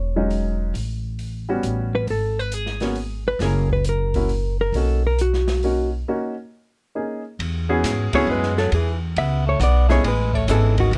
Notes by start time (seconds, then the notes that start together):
Already playing: E1 C#5
0.16 F#3 G#3 C#4 D#4
0.31 open hi-hat
0.74 A1, open hi-hat
1.19 open hi-hat
1.49 G3 B3 C#4 F#4
1.63 A1, closed hi-hat
1.95 B4
2.07 G#1 A4, open hi-hat
2.39 B4
2.52 G#4, closed hi-hat
2.66 snare
2.80 A#3 B3 C#4 F#4, snare, open hi-hat
2.95 open hi-hat
3.28 B4
3.39 F#1 A#3 C#4 E4 G#4, snare, open hi-hat
3.44 A#4
3.69 B4, kick
3.84 closed hi-hat
3.89 A#4
4.14 A#3 C#4 E4 F#4, kick, open hi-hat
4.29 open hi-hat
4.61 A#4
4.72 B1 A#3 C#4 D#4 F#4, open hi-hat
4.77 A4
5.07 A#4
5.19 F#4, closed hi-hat
5.33 snare
5.48 snare, open hi-hat
5.63 A#3 C#4 D#4 F#4, open hi-hat
6.08 A#3 C#4 D#4 F#4
6.95 A#3 C#4 D#4 G#4
7.39 E2, ride
7.69 B3 C#4 E4 F#4 G#4
7.84 G#2, snare, hi-hat pedal, ride
8.13 A3 B3 C#4 E4 F#4 G#4 C#5, muted upright bass stroke, kick, ride
8.27 F#2 G#3
8.32 B4
8.43 snare
8.58 F#3 A4, snare
8.72 E2 E3 G#4, ride
9.16 C#2 B3 E5, ride
9.46 A3 C#5
9.60 B1 B3 D5, hi-hat pedal, ride
9.88 A3 B3 C#4 D#4 E4 G#4 C#5, snare
10.04 A1 G#3 B4, ride
10.33 A3 C#5, kick
10.47 G#1 E3 B3 C#4 D#4 E4 G#4 A4, hi-hat pedal, ride
10.78 D#3 F#4, kick, ride
10.91 B1 E3, ride